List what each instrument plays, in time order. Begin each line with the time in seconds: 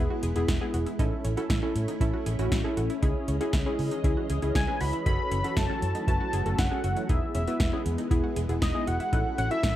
Already playing: string machine G#3 B3 E4, analog polysynth B3 E4 G#4
0.10 synth arpeggio sound F#4
0.23 fingered electric bass E1, synth arpeggio sound G#4, closed hi-hat
0.36 fingered electric bass E1, analog polysynth B3 E4 G#4, closed hi-hat
0.48 fingered electric bass E1, synth arpeggio sound E4, kick, snare, closed hi-hat
0.61 analog polysynth B3 E4 G#4, synth arpeggio sound G#4
0.74 fingered electric bass E1, synth arpeggio sound F#4, closed hi-hat
0.86 synth arpeggio sound E4, closed hi-hat
0.99 fingered electric bass A1, string machine A3 C#4 E4, analog polysynth C#4 E4 A4, synth arpeggio sound D#4, kick, closed hi-hat
1.24 fingered electric bass A1, synth arpeggio sound C#4, closed hi-hat
1.37 analog polysynth C#4 E4 A4, synth arpeggio sound F#4, closed hi-hat
1.50 fingered electric bass A1, synth arpeggio sound E4, kick, snare, closed hi-hat
1.63 analog polysynth C#4 E4 A4, synth arpeggio sound C#4
1.75 fingered electric bass A2, closed hi-hat
1.88 synth arpeggio sound D#4, closed hi-hat
2.00 fingered electric bass A1, analog polysynth C#4 E4 A4, synth arpeggio sound E4, kick, closed hi-hat
2.13 synth arpeggio sound F#4
2.26 fingered electric bass A1, synth arpeggio sound G#4, closed hi-hat
2.39 fingered electric bass A1, analog polysynth C#4 E4 F#4, closed hi-hat
2.52 fingered electric bass A1, synth arpeggio sound E4, kick, snare, closed hi-hat
2.64 analog polysynth C#4 E4 A4, synth arpeggio sound G#4
2.77 fingered electric bass A1, synth arpeggio sound F#4, closed hi-hat
2.90 synth arpeggio sound E4, closed hi-hat
3.02 fingered electric bass C#2, string machine E3 G#3 G#4 D#5, analog polysynth C#4 E4 G#4, synth arpeggio sound D#4, kick, closed hi-hat
3.28 fingered electric bass C#2, synth arpeggio sound C#4, closed hi-hat
3.41 analog polysynth C#4 E4 G#4, synth arpeggio sound F#4, closed hi-hat
3.53 fingered electric bass C#2, synth arpeggio sound E4, kick, snare, closed hi-hat
3.66 analog polysynth C#4 E4 G#4, synth arpeggio sound C#4
3.79 fingered electric bass C#3, open hi-hat
3.91 synth arpeggio sound D#4, closed hi-hat
4.04 fingered electric bass C#2, analog polysynth C#4 E4 G#4, synth arpeggio sound E4, kick, closed hi-hat
4.17 synth arpeggio sound F#4
4.30 fingered electric bass C#2, synth arpeggio sound G#4, closed hi-hat
4.42 fingered electric bass C#2, analog polysynth C#4 E4 G#4, closed hi-hat
4.55 fingered electric bass C#2, synth arpeggio sound E4, analog synth lead G#5, kick, snare, closed hi-hat
4.68 analog polysynth C#4 E4 B4, synth arpeggio sound G#4
4.81 fingered electric bass C#2, synth arpeggio sound F#4, analog synth lead B5, open hi-hat
4.93 synth arpeggio sound E4, closed hi-hat
5.06 fingered electric bass F#1, string machine F#3 A3 F#4, analog polysynth C#4 F#4 A4, synth arpeggio sound D#4, analog synth lead B5, kick, closed hi-hat
5.31 fingered electric bass F#1, synth arpeggio sound C#4, analog synth lead B5, closed hi-hat
5.44 analog polysynth C#4 F#4 A4, synth arpeggio sound F#4, closed hi-hat
5.57 fingered electric bass F#1, synth arpeggio sound E4, analog synth lead A5, kick, snare, closed hi-hat
5.69 analog polysynth C#4 F#4 A4, synth arpeggio sound C#4
5.82 fingered electric bass F#2, closed hi-hat
5.95 synth arpeggio sound D#4, closed hi-hat
6.07 fingered electric bass F#1, analog polysynth C#4 F#4 B4, synth arpeggio sound E4, analog synth lead A5, kick, closed hi-hat
6.21 synth arpeggio sound F#4
6.33 fingered electric bass F#1, synth arpeggio sound G#4, closed hi-hat
6.46 fingered electric bass F#1, analog polysynth C#4 F#4 A4, closed hi-hat
6.58 fingered electric bass F#1, synth arpeggio sound E4, analog synth lead F#5, kick, snare, closed hi-hat
6.71 analog polysynth C#4 F#4 A4, synth arpeggio sound G#4
6.84 fingered electric bass F#1, synth arpeggio sound F#4, closed hi-hat
6.97 synth arpeggio sound E4, closed hi-hat
7.09 fingered electric bass E1, string machine G#3 B3 E4, analog polysynth B3 E4 G#4, synth arpeggio sound D#4, analog synth lead E5, kick, closed hi-hat
7.35 fingered electric bass E1, synth arpeggio sound C#4, analog synth lead E5, closed hi-hat
7.48 analog polysynth B3 E4 B4, synth arpeggio sound F#4, closed hi-hat
7.60 fingered electric bass E1, synth arpeggio sound E4, kick, snare, closed hi-hat
7.73 analog polysynth B3 E4 G#4, synth arpeggio sound C#4
7.86 fingered electric bass E2, closed hi-hat
7.98 synth arpeggio sound D#4, closed hi-hat
8.11 fingered electric bass E1, analog polysynth B3 E4 G#4, synth arpeggio sound E4, kick, closed hi-hat
8.24 synth arpeggio sound F#4
8.36 fingered electric bass E1, synth arpeggio sound G#4, closed hi-hat
8.49 fingered electric bass E1, analog polysynth B3 E4 G#4, closed hi-hat
8.62 fingered electric bass E1, synth arpeggio sound E4, analog synth lead D#5, kick, snare, closed hi-hat
8.74 analog polysynth B3 E4 G#4, synth arpeggio sound G#4
8.87 fingered electric bass E1, synth arpeggio sound F#4, analog synth lead F#5, closed hi-hat
9.00 synth arpeggio sound E4, closed hi-hat
9.13 fingered electric bass A1, string machine A3 C#4, analog polysynth C#4 E4 A4, synth arpeggio sound D#4, kick, closed hi-hat
9.38 fingered electric bass A1, synth arpeggio sound C#4, analog synth lead F#5, closed hi-hat
9.51 analog polysynth C#4 E4 A4, synth arpeggio sound F#4, analog synth lead E5, closed hi-hat
9.63 fingered electric bass A1, synth arpeggio sound E4, kick, snare, closed hi-hat